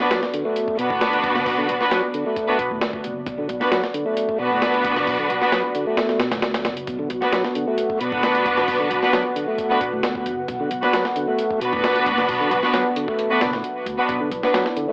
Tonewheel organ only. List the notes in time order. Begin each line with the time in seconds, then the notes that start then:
0.11 F#3
0.33 D3
0.45 A3
0.79 B2
0.90 A2
1.46 B2
1.58 D3
1.91 F#3
2.14 D3
2.26 A3
2.59 B2
2.71 A2
3.27 B2
3.38 D3
3.71 F#3
3.94 D3
4.06 A3
4.39 B2
4.51 A2
5.07 B2
5.19 D3
5.52 F#3
5.75 D3
5.87 A3
6.20 B2
6.32 A2
6.87 B2
6.99 D3
7.33 F#3
7.55 D3
7.67 A3
8.01 B2
8.12 A2
8.68 B2
8.80 D3
9.13 F#3
9.36 D3
9.48 A3
9.81 B2
9.93 A2
10.48 B2
10.60 D3
10.93 F#3
11.16 D3
11.28 A3
11.61 B2
11.73 A2
12.29 B2
12.41 D3
12.74 F#3
12.96 D3
13.08 A3
13.42 B2
13.53 A2
14.09 B2
14.21 D3
14.54 F#3
14.77 D3
14.88 A3